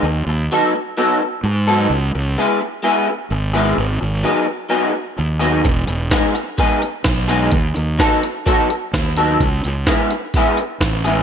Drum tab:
HH |--------|--------|--------|xxxxxxxx|
SD |--------|--------|--------|--o---o-|
BD |--------|--------|--------|o-o-o-o-|

HH |xxxxxxxx|xxxxxxxx|
SD |--o---o-|--o---o-|
BD |o-o-o-o-|o-o-o-o-|